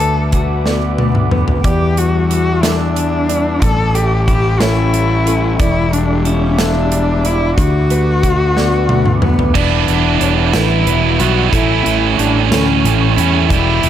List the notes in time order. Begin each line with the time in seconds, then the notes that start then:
Already playing: D2 D3 D4 A4 B4 F#5 D6
0.00 A3 B4, closed hi-hat
0.32 F#4, kick, closed hi-hat
0.66 B3 D5, snare
0.98 A3, high tom
1.15 mid tom
1.31 B3 B4, mid tom
1.48 floor tom
1.64 E2 G3 G4 D5 E5, kick, closed hi-hat
1.97 G3 F#4, closed hi-hat
2.30 E4 F#4, closed hi-hat
2.63 D4 E5, snare, closed hi-hat
2.96 G3, closed hi-hat
3.29 D4 D5, closed hi-hat
3.62 A1 A2 A4 G5 C#6, kick, closed hi-hat
3.94 G3 G4 A4, closed hi-hat
4.28 E4 G4, kick, closed hi-hat
4.60 C#4 E4 C#5, snare, closed hi-hat
4.93 G3, closed hi-hat
5.27 C#4 A4, closed hi-hat
5.59 E1 E2 E4 G4 D5 E5 D6, kick, closed hi-hat
5.92 G3 D4, closed hi-hat
6.25 C#4 E4, closed hi-hat
6.58 D4 E5, snare, closed hi-hat
6.92 G3, closed hi-hat
7.24 D4 E4 D5, closed hi-hat
7.57 D2 D3 F#4 B4 F#5, kick, closed hi-hat
7.90 A3 B4, closed hi-hat
8.23 F#4, kick, closed hi-hat
8.56 B3 D5, snare
8.89 A3, high tom
9.06 mid tom
9.22 B3 B4, mid tom
9.39 floor tom
9.54 E1 E2 E3 G3 B3 D4 E4 D5 E5, kick, crash
9.88 E1 E3, closed hi-hat
10.21 E1 G3 C#5, closed hi-hat
10.53 A1 D4 E4 B4, snare, closed hi-hat
10.86 E1 E3 B4, closed hi-hat
11.19 B1 E3 G3 B3 E4 F#4, closed hi-hat
11.52 A1 A2 E3 A3 C#4 E4 A4 G5 C#6, kick, closed hi-hat
11.85 A1 E3, closed hi-hat
12.18 A1 G3 D4, closed hi-hat
12.51 D2 C#4 C#5, snare, closed hi-hat
12.84 A1 E3, closed hi-hat
13.16 E2 A2 E3 G3 A3 C#4 E4, closed hi-hat
13.50 E1 E2 E3 G3 B3 E4 D5 E5, kick, closed hi-hat
13.83 E1 E3, closed hi-hat